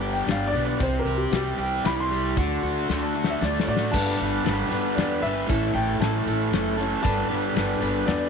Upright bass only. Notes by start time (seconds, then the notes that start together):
Already playing: G1
0.27 G1
0.53 B1
0.80 C2
1.05 C2
1.32 C2
1.57 C2
1.84 C2
2.37 D2
2.62 D2
2.89 D2
3.41 D2
3.67 A2
3.94 G1
4.20 G1
4.45 G1
4.70 G1
4.96 E2
5.23 G1
5.50 A1
5.74 A1
6.00 A1
6.26 A1
6.52 F#1
7.05 G1
7.30 G1
7.56 G1
7.82 G1
8.07 E2